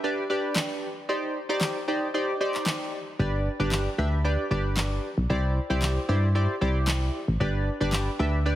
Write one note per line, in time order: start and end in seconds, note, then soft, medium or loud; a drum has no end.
0.04 0.23 D4 medium
0.04 0.23 G4 medium
0.04 0.23 B4 medium
0.04 0.24 D5 medium
0.30 0.88 D4 medium
0.30 0.88 G4 medium
0.30 0.88 B4 medium
0.30 0.88 D5 medium
0.56 snare medium
0.56 clap loud
1.09 1.38 D#4 medium
1.09 1.38 G4 medium
1.09 1.38 C5 medium
1.09 1.38 D5 medium
1.49 1.78 D#4 medium
1.49 1.78 G4 medium
1.49 1.78 C5 medium
1.49 1.78 D5 loud
1.61 snare medium
1.61 clap loud
1.88 2.07 D#4 medium
1.88 2.08 G4 medium
1.88 2.08 C5 medium
1.88 2.08 D5 medium
2.14 2.34 D#4 medium
2.14 2.34 G4 medium
2.14 2.34 C5 medium
2.14 2.34 D5 medium
2.40 2.98 D#4 medium
2.40 2.98 G4 medium
2.40 2.98 C5 medium
2.40 2.98 D5 medium
2.55 clap medium
2.66 snare medium
2.66 clap loud
3.19 3.49 G1 loud
3.19 3.48 D4 medium
3.19 3.48 G4 medium
3.19 3.48 B4 medium
3.19 3.49 D5 medium
3.60 3.88 G1 medium
3.60 3.88 D4 medium
3.60 3.88 G4 medium
3.60 3.88 B4 medium
3.60 3.88 D5 medium
3.71 snare medium
3.71 clap loud
3.98 4.37 D2 medium
3.98 4.18 D4 medium
3.98 4.18 G4 medium
3.98 4.18 B4 medium
3.98 4.18 E5 medium
4.24 4.44 D4 medium
4.24 4.44 G4 medium
4.24 4.44 B4 medium
4.24 4.44 D5 medium
4.51 4.99 G1 medium
4.51 5.09 D4 medium
4.51 5.09 G4 medium
4.51 5.09 B4 medium
4.51 5.09 D5 medium
4.77 snare medium
4.77 clap loud
5.18 5.27 B1 medium
5.30 5.59 C2 loud
5.30 5.59 E4 medium
5.30 5.59 G4 medium
5.30 5.59 C5 medium
5.30 5.59 D5 loud
5.70 5.98 C2 medium
5.70 5.99 E4 medium
5.70 5.99 G4 medium
5.70 5.99 C5 medium
5.70 5.99 D5 loud
5.82 snare medium
5.82 clap loud
6.09 6.47 G2 medium
6.09 6.28 E4 medium
6.09 6.28 G4 medium
6.09 6.29 C5 medium
6.09 6.29 D5 medium
6.35 6.55 E4 medium
6.35 6.55 G4 medium
6.35 6.55 C5 medium
6.35 6.55 D5 medium
6.61 7.10 C2 medium
6.61 7.19 E4 medium
6.61 7.19 G4 medium
6.61 7.19 C5 medium
6.61 7.19 D5 loud
6.87 snare medium
6.87 clap loud
7.28 7.37 A1 medium
7.40 7.70 G1 loud
7.40 7.69 D4 medium
7.40 7.69 G4 medium
7.40 7.69 B4 medium
7.40 7.69 D5 medium
7.80 8.09 G1 medium
7.80 8.09 D4 medium
7.80 8.09 G4 medium
7.80 8.09 B4 medium
7.80 8.09 D5 loud
7.92 snare medium
7.92 clap loud
8.19 8.55 D2 medium
8.19 8.39 D4 medium
8.19 8.39 G4 medium
8.19 8.39 B4 medium
8.19 8.39 E5 medium
8.46 8.55 D4 medium
8.46 8.55 G4 medium
8.46 8.55 B4 medium
8.46 8.55 D5 medium